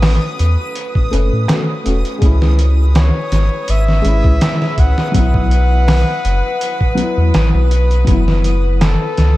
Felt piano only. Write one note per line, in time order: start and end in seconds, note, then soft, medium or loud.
0.00 1.07 A3 medium
0.00 1.09 C#4 medium
0.00 1.10 F#4 medium
1.11 1.42 A3 loud
1.11 1.42 C#4 medium
1.11 1.43 B4 loud
1.47 1.81 A3 medium
1.47 1.81 C#4 medium
1.47 1.82 F#4 medium
1.84 2.17 A3 medium
1.84 2.18 C#4 medium
1.84 2.19 F#4 medium
2.18 3.99 G#3 medium
2.18 4.01 C#4 medium
2.25 4.03 E4 loud
4.01 5.09 G#3 loud
4.01 5.10 C#4 medium
4.08 5.12 E4 loud
5.11 6.92 F#3 medium
5.11 6.94 B3 medium
5.18 6.95 E4 medium
6.95 8.02 F#3 medium
6.95 8.03 B3 medium
7.01 8.05 E4 loud
8.04 9.37 F#3 medium
8.04 9.37 B3 medium
8.11 9.37 E4 loud